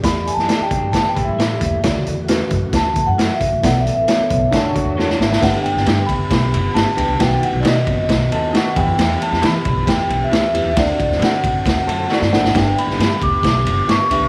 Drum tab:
RD |----------------|----------------|----------------|x-x-x-x-x-x-x-x-|
HH |x-x-x-x-x-x-x-x-|x-x-x-x-x-x-x-x-|x-x-x-x-x-x-----|----------------|
SD |o--oo---o---o---|o---o---o---o---|o---o---o---oooo|o--oo---o---o---|
BD |o-----o-o-o---o-|o-----o-o-o---o-|o-----o-o-o-----|o-----o-o-------|

RD |x-x-x-x-x-x-x-x-|x-x-x-x-x-x-x-x-|x-x-x-x-x-x-----|x-x-x-x-x-x-x-x-|
HH |----------------|----------------|----------------|----------------|
SD |o---o---o---o---|o--oo---o---o---|o--oo---o---oooo|o--oo---o---o---|
BD |o-----o-o-----o-|------o-o-------|o-o---o-o-------|o-----o-o-------|